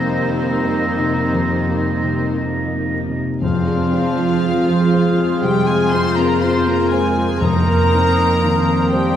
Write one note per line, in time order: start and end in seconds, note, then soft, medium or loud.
0.00 1.31 F2 medium
0.00 3.17 F2 medium
0.00 0.16 C3 soft
0.00 2.39 C3 medium
0.00 3.18 D#3 medium
0.00 3.18 G3 medium
0.00 0.51 A#3 soft
0.00 3.10 A#3 medium
0.00 3.18 A#3 medium
0.00 2.35 C4 medium
0.00 3.05 D#4 medium
0.00 3.06 D#4 medium
0.00 3.17 D#4 medium
0.00 2.35 C5 medium
0.00 3.06 A#6 medium
0.30 0.86 D#4 soft
0.65 1.21 A#3 medium
0.99 1.55 C3 soft
1.34 3.38 F2 soft
1.69 2.25 A#3 soft
2.04 2.59 C3 soft
2.38 2.94 D#4 medium
2.73 3.28 A#3 soft
3.08 3.42 C3 soft
3.41 7.37 F2 medium
3.41 5.39 F2 medium
3.41 4.90 F2 medium
3.41 5.40 F3 medium
3.41 7.38 G#3 medium
3.41 4.43 C4 medium
3.41 7.38 C4 medium
3.41 4.39 D4 medium
3.41 5.40 F4 medium
3.41 7.37 G#4 medium
3.41 7.38 C5 medium
3.41 5.39 F5 medium
3.41 7.44 F6 medium
3.68 4.08 G#4 medium
3.93 4.34 F4 medium
4.19 4.59 C4 medium
4.44 4.94 C4 medium
4.44 4.84 F4 soft
4.69 5.09 G#4 medium
4.93 7.41 F4 medium
4.93 5.33 C5 medium
5.18 5.58 G#4 medium
5.42 5.84 C3 medium
5.42 5.68 G3 medium
5.42 5.69 G4 medium
5.42 5.68 G5 loud
5.66 5.93 G#3 medium
5.66 6.08 G#4 medium
5.66 5.94 G#4 medium
5.66 5.92 G#5 medium
5.91 6.19 C4 medium
5.91 6.33 F4 medium
5.91 6.19 C5 medium
5.91 6.17 C6 loud
6.17 6.43 A#3 medium
6.17 6.57 C4 medium
6.17 6.43 A#4 medium
6.17 6.42 A#5 medium
6.41 7.40 A#3 medium
6.41 6.68 C4 medium
6.41 6.82 F4 medium
6.41 6.67 C5 medium
6.41 6.67 C6 medium
6.66 6.93 A#3 medium
6.66 7.07 G#4 medium
6.66 6.93 A#4 medium
6.66 6.91 A#5 medium
6.90 7.42 G#3 medium
6.90 7.42 G#4 medium
6.90 7.32 C5 medium
6.90 7.40 G#5 medium
7.17 7.42 G#4 medium
7.40 9.16 F2 medium
7.40 8.87 F2 medium
7.40 9.16 F2 medium
7.40 7.91 A#3 medium
7.40 9.16 A#3 medium
7.40 8.92 A#3 medium
7.40 9.16 C4 medium
7.40 8.40 D#4 medium
7.40 8.91 A#4 loud
7.40 9.16 A#4 medium
7.40 9.16 C5 medium
7.40 8.90 A#5 loud
7.40 9.16 D#6 medium
7.67 8.07 A#4 medium
7.92 8.42 C4 medium
7.92 8.32 D#4 medium
8.17 8.57 C4 soft
8.41 8.82 D#3 soft
8.41 8.90 A#3 medium
8.41 9.16 D4 medium
8.68 9.07 A#4 medium
8.90 9.16 G3 medium
8.90 9.16 A#3 medium
8.90 9.16 G4 medium
8.90 9.16 C5 medium
8.90 9.16 G5 loud